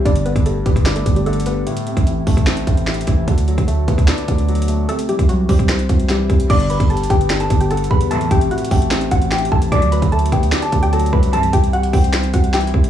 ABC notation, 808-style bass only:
X:1
M:4/4
L:1/16
Q:1/4=149
K:G
V:1 name="808-style bass" clef=bass
G,,,3 G,,,3 G,,,4 G,,,6 | z3 A,,,3 A,,,4 A,,,4 A,,,2 | D,,3 D,,3 D,,2 z2 D,,6 | z3 C,,3 C,,4 C,,4 C,,2 |
G,,,3 G,,,3 G,,,4 G,,,4 E,,2- | E,,2 A,,,2 z2 A,,,4 A,,,4 A,,,2 | D,,3 D,,3 D,,2 z2 D,,4 C,,2- | C,,2 C,,4 C,,4 C,,4 C,,2 |]